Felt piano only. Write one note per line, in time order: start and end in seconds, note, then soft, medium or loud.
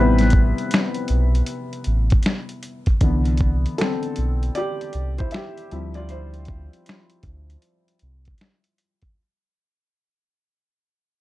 0.00 1.06 C3 soft
0.00 1.06 G3 soft
0.00 1.06 B3 medium
0.00 3.03 E4 medium
0.00 0.66 B4 medium
0.00 3.04 C5 medium
3.02 4.13 D3 medium
3.02 4.14 E3 soft
3.02 4.14 B3 medium
3.78 4.53 C4 medium
3.78 4.58 A4 medium
4.55 5.16 G4 medium
4.55 5.20 D5 medium
5.18 5.33 E4 medium
5.18 5.33 C5 medium
5.32 5.92 G4 medium
5.32 5.97 E5 medium
5.71 6.26 F3 soft
5.71 6.27 G3 soft
5.71 6.27 C4 soft
5.71 6.10 E4 medium
5.95 6.09 F4 medium
5.95 6.10 D5 medium
6.10 8.37 E4 medium
6.10 8.36 C5 medium